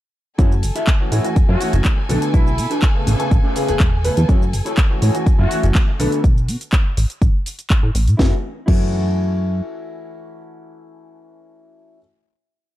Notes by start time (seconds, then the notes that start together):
0.38 F#2 E3 A3 C#4 E4 F#4 A4 C#5 G#5, kick, closed hi-hat, shaker
0.52 shaker
0.63 F#1, muted clean electric guitar stroke, open hi-hat, shaker
0.75 E4 F#4 A4 E5, closed hi-hat, shaker
0.87 kick, clap, closed hi-hat, shaker
1.00 E3 A3 C#4 F#4, muted clean electric guitar stroke
1.12 A2 E4 F#4 A4 C#5, open hi-hat, shaker
1.24 E3 A3 C#4 F#4, closed hi-hat, shaker
1.36 F#2, kick, closed hi-hat, shaker
1.48 F#2 E4 F#4 A4 C#5
1.60 E3 A3 C#4 F#4, open hi-hat, shaker
1.73 F#1 E3 A3 C#4 F#4, closed hi-hat, shaker
1.84 kick, clap, closed hi-hat, shaker
1.97 muted clean electric guitar stroke
2.09 B1 D3 A3 B3 D4 F#4 A4 B4, open hi-hat, shaker
2.22 closed hi-hat, shaker
2.33 B1 D3 A3 B3 E4 F#4, kick, closed hi-hat, shaker
2.47 shaker
2.58 B2, muted clean electric guitar stroke, open hi-hat, shaker
2.70 D4 F#4 A4 B4, closed hi-hat, shaker
2.82 kick, clap, closed hi-hat, shaker
2.95 C#3 A3 B3 G#4, muted clean electric guitar stroke
3.06 A1 C#4 G#4 A4 B4, open hi-hat, shaker
3.19 C#3 A3 B3 G#5, closed hi-hat, shaker
3.31 A1, kick, closed hi-hat, shaker
3.43 C#4 G#4 A4 B4
3.55 C#3 A3 B3 G#4, open hi-hat, shaker
3.68 E1 C#3 A3 B3 G#4, closed hi-hat, shaker
3.80 E1, kick, clap, closed hi-hat, shaker
3.92 muted clean electric guitar stroke
4.04 C#3 A3 B3 B4, muted clean electric guitar stroke, open hi-hat, shaker
4.17 E2, closed hi-hat, shaker
4.28 F#2 E3 A3 C#4 E4 F#4 A4 C#5, kick, closed hi-hat, shaker
4.42 shaker
4.53 F#1, muted clean electric guitar stroke, open hi-hat, shaker
4.65 E4 F#4 A4 C#5, closed hi-hat, shaker
4.77 kick, clap, closed hi-hat, shaker
4.90 E3 A3 C#4 F#4, muted clean electric guitar stroke
5.02 A2 E4 F#4 A4 C#5, open hi-hat, shaker
5.14 E3 A3 C#4 F#4, closed hi-hat, shaker
5.26 F#2, kick, closed hi-hat, shaker
5.38 F#2 E4 F#4 A4 E5
5.50 E3 A3 C#4 F#4, open hi-hat, shaker
5.63 F#1 E3 A3 C#4 F#4, closed hi-hat, shaker
5.75 kick, clap, closed hi-hat, shaker
5.88 muted clean electric guitar stroke
5.99 B1 D3 A3 B3 D4 F#4 A4 B4, open hi-hat, shaker
6.12 closed hi-hat, shaker
6.24 B1, kick, closed hi-hat, shaker
6.37 shaker
6.48 B2, open hi-hat, shaker
6.61 closed hi-hat, shaker
6.72 kick, clap, closed hi-hat, shaker
6.97 A1, open hi-hat, shaker
7.10 closed hi-hat, shaker
7.22 A1, kick, closed hi-hat, shaker
7.46 open hi-hat, shaker
7.59 closed hi-hat, shaker
7.70 kick, clap, closed hi-hat, shaker
7.83 A2
7.95 A1, open hi-hat, shaker
8.07 A2, closed hi-hat, shaker
8.17 F#2 E3 A3 C#4 E4 F#4 A4, kick, snare
8.66 F#2 E3 A3 C#4 E4 F#4, kick, crash
8.70 A4